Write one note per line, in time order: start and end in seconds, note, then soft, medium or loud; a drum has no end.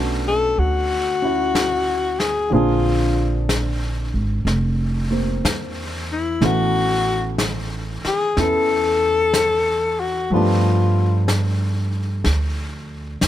0.00 0.54 B1 medium
0.00 2.50 A3 soft
0.00 2.52 B3 soft
0.00 1.21 C#4 soft
0.00 2.52 D4 soft
0.00 1.24 F#4 medium
0.28 0.61 A4 medium
0.58 2.48 D2 medium
0.58 2.21 F#4 medium
0.58 brush sweep soft
1.22 2.52 C#4 soft
1.22 2.52 E4 soft
1.22 2.53 F#4 soft
1.55 brush sweep soft
1.55 snare soft
1.55 hi-hat pedal soft
2.20 2.55 G#4 medium
2.20 snare soft
2.50 4.10 A#1 medium
2.50 6.40 D3 soft
2.50 5.09 A#3 soft
2.50 5.10 C4 soft
2.50 6.42 D4 soft
2.50 3.50 F4 medium
2.50 brush sweep soft
2.55 6.43 G#4 medium
3.49 brush sweep soft
3.49 snare soft
3.49 hi-hat pedal soft
4.14 4.44 G#1 medium
4.45 5.39 F1 medium
4.45 brush sweep soft
4.45 snare soft
5.11 6.41 A#3 soft
5.11 6.42 C4 soft
5.44 6.37 E2 medium
5.44 brush sweep soft
5.44 snare soft
5.44 hi-hat pedal medium
6.12 6.46 E4 medium
6.41 8.00 A1 medium
6.41 10.31 E3 soft
6.41 10.31 A3 soft
6.41 8.36 B3 soft
6.41 8.37 C#4 soft
6.41 7.40 F#4 medium
6.41 10.32 B4 soft
6.41 brush sweep soft
6.41 snare soft
7.38 brush sweep soft
7.38 snare soft
7.38 hi-hat pedal soft
8.05 8.41 G#4 medium
8.05 muted upright bass stroke soft
8.05 snare soft
8.37 10.27 E2 medium
8.37 10.32 B3 soft
8.37 10.32 C#4 soft
8.37 10.32 E4 soft
8.37 10.01 A4 medium
8.37 10.33 A4 soft
8.37 brush sweep soft
8.37 snare soft
9.34 brush sweep soft
9.34 snare soft
9.34 hi-hat pedal soft
10.00 10.34 F#4 medium
10.30 12.21 G2 medium
10.30 13.28 F3 medium
10.30 13.28 A3 soft
10.30 13.28 B3 soft
10.30 11.29 F4 medium
10.30 brush sweep soft
10.35 13.28 D4 soft
10.35 13.28 G4 medium
11.28 brush sweep soft
11.28 snare soft
11.28 hi-hat pedal soft
12.24 13.19 D2 medium
12.24 brush sweep soft
12.24 snare soft
13.21 13.28 F2 medium
13.21 brush sweep soft
13.21 snare soft
13.21 hi-hat pedal soft